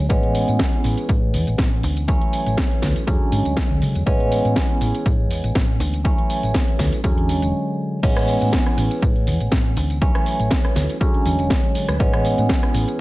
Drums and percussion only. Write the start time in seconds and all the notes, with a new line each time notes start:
0.10 kick, closed hi-hat, tambourine
0.23 closed hi-hat
0.35 open hi-hat, tambourine
0.48 closed hi-hat, tambourine
0.59 kick, snare, closed hi-hat, tambourine
0.73 closed hi-hat
0.84 open hi-hat, tambourine
0.97 closed hi-hat, tambourine
1.09 kick, closed hi-hat, tambourine
1.34 open hi-hat, tambourine
1.47 closed hi-hat, tambourine
1.58 kick, snare, closed hi-hat, tambourine
1.83 open hi-hat, tambourine
1.97 closed hi-hat, tambourine
2.08 kick, closed hi-hat, tambourine
2.21 closed hi-hat
2.33 open hi-hat, tambourine
2.46 closed hi-hat, tambourine
2.58 kick, snare, closed hi-hat, tambourine
2.71 closed hi-hat
2.82 kick, snare, open hi-hat, tambourine
2.96 closed hi-hat, tambourine
3.07 kick, closed hi-hat, tambourine
3.32 open hi-hat, tambourine
3.45 closed hi-hat, tambourine
3.57 kick, snare, closed hi-hat, tambourine
3.82 open hi-hat, tambourine
3.95 closed hi-hat, tambourine
4.07 kick, closed hi-hat, tambourine
4.20 closed hi-hat
4.32 open hi-hat, tambourine
4.45 closed hi-hat, tambourine
4.56 kick, snare, closed hi-hat, tambourine
4.70 closed hi-hat
4.81 open hi-hat, tambourine
4.95 closed hi-hat, tambourine
5.06 kick, closed hi-hat, tambourine
5.31 open hi-hat, tambourine
5.44 closed hi-hat, tambourine
5.55 kick, snare, closed hi-hat, tambourine
5.80 open hi-hat, tambourine
5.94 closed hi-hat, tambourine
6.05 kick, closed hi-hat, tambourine
6.18 closed hi-hat
6.30 open hi-hat, tambourine
6.43 closed hi-hat, tambourine
6.54 kick, snare, closed hi-hat, tambourine
6.68 closed hi-hat
6.79 kick, snare, open hi-hat, tambourine
6.93 closed hi-hat, tambourine
7.04 kick, closed hi-hat, tambourine
7.18 closed hi-hat
7.29 open hi-hat, tambourine
7.42 closed hi-hat, tambourine
8.03 kick, closed hi-hat, crash, tambourine
8.17 cross-stick, closed hi-hat
8.28 open hi-hat, tambourine
8.41 closed hi-hat, tambourine
8.53 kick, snare, closed hi-hat, tambourine
8.66 cross-stick, closed hi-hat
8.78 open hi-hat, tambourine
8.91 closed hi-hat, tambourine
9.02 kick, closed hi-hat, tambourine
9.16 closed hi-hat
9.27 open hi-hat, tambourine
9.40 closed hi-hat, tambourine
9.52 kick, snare, closed hi-hat, tambourine
9.65 closed hi-hat
9.77 open hi-hat, tambourine
9.90 closed hi-hat, tambourine
10.02 kick, closed hi-hat, tambourine
10.15 cross-stick, closed hi-hat
10.26 open hi-hat, tambourine
10.40 closed hi-hat, tambourine
10.51 kick, snare, closed hi-hat, tambourine
10.65 cross-stick, closed hi-hat
10.76 snare, open hi-hat, tambourine
10.90 closed hi-hat, tambourine
11.01 kick, closed hi-hat, tambourine
11.14 closed hi-hat
11.26 open hi-hat, tambourine
11.39 closed hi-hat, tambourine
11.50 kick, snare, closed hi-hat, tambourine
11.64 closed hi-hat
11.75 open hi-hat, tambourine
11.89 cross-stick, closed hi-hat, tambourine
12.00 kick, closed hi-hat, tambourine
12.13 cross-stick, closed hi-hat
12.25 open hi-hat, tambourine
12.38 closed hi-hat, tambourine
12.49 kick, snare, closed hi-hat, tambourine
12.63 cross-stick, closed hi-hat
12.74 open hi-hat, tambourine
12.88 closed hi-hat, tambourine